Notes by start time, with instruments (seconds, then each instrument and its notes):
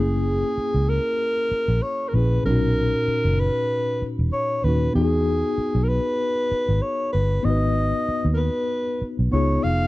Already playing: fingered electric bass F#1, tine electric piano C#4 E4, alto saxophone G#4
0.00 tine electric piano A#3 G#4
0.58 muted fingered electric bass stroke
0.74 fingered electric bass C#2
0.89 alto saxophone A#4
1.51 muted fingered electric bass stroke
1.68 fingered electric bass A#1
1.82 alto saxophone C#5
2.09 alto saxophone A#4
2.13 fingered electric bass A#1, tine electric piano A#2 C#4 E4, alto saxophone B4
2.17 tine electric piano G#4
2.44 fingered electric bass B1, tine electric piano A#2 C#4, alto saxophone A#4
2.49 tine electric piano D#4 F#4
3.08 muted fingered electric bass stroke
3.25 fingered electric bass F#1
3.40 alto saxophone B4
4.02 muted fingered electric bass stroke
4.19 fingered electric bass E1
4.33 alto saxophone C#5
4.64 fingered electric bass D#2, tine electric piano A#2 C#4 D#4, alto saxophone B4
4.68 tine electric piano F#4
4.93 fingered electric bass E2, tine electric piano B3 D#4, alto saxophone G#4
4.99 tine electric piano F#4 G#4
5.58 muted fingered electric bass stroke
5.75 fingered electric bass B1
5.84 alto saxophone A#4
5.88 alto saxophone B4
6.51 muted fingered electric bass stroke
6.69 fingered electric bass G#1
6.82 alto saxophone C#5
7.13 fingered electric bass G1, alto saxophone B4
7.43 fingered electric bass G#1, tine electric piano B3 D#4, alto saxophone D#5
7.48 tine electric piano F#4 B4
8.09 muted fingered electric bass stroke
8.25 fingered electric bass D#2
8.34 alto saxophone A#4 B4
9.02 muted fingered electric bass stroke
9.19 fingered electric bass B1
9.32 fingered electric bass C#2, tine electric piano B3 D#4 F4 G#4, alto saxophone C#5
9.63 fingered electric bass F1, alto saxophone F5